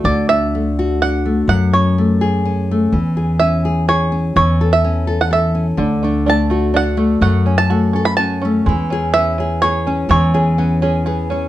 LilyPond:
<<
  \new Staff \with { instrumentName = "Five-string banjo" } { \time 3/4 \key d \lydian \tempo 4 = 125 d''8 e''4. fis''4 | fis''8 cis''2 r8 | r4 e''4 cis''4 | cis''8. e''4 fis''16 e''8. r16 |
r4 a''4 fis''4 | fis''8. a''4 b''16 a''8. r16 | r4 e''4 cis''4 | cis''2~ cis''8 r8 | }
  \new Staff \with { instrumentName = "Five-string banjo" } { \time 3/4 \key d \lydian r2. | r2. | r2. | r2. |
d8 a8 d'8 a8 d'8 a8 | a8 cis'8 fis'8 cis'8 fis'8 cis'8 | gis8 cis'8 b8 cis'8 b8 cis'8 | gis8 cis'8 b8 cis'8 b8 cis'8 | }
  \new Staff \with { instrumentName = "Nylon-string guitar" } { \time 3/4 \key d \lydian << { fis'8 d'8 a8 fis'8 d'8 a8~ | a8 cis'8 a8 gis'8 cis'8 a8 | r8 gis'8 cis'8 gis'8 gis'8 cis'8~ | cis'8 a'8 cis'8 a'8 a'8 cis'8 |
r8 d'8 a8 fis'8 d'8 a8~ | a8 cis'8 a8 a'8 cis'8 a8 | r8 gis'8 cis'8 gis'8 gis'8 cis'8~ | cis'8 gis'8 cis'8 gis'8 gis'8 cis'8 | } \\ { d2. | fis,2. | e2. | e2. |
d2. | fis,2. | e2. | e2. | } >> }
  \new Staff \with { instrumentName = "Upright bass" } { \clef bass \time 3/4 \key d \lydian d,2. | fis,2. | e,2. | e,2. |
d,2. | fis,2. | e,2. | e,2. | }
>>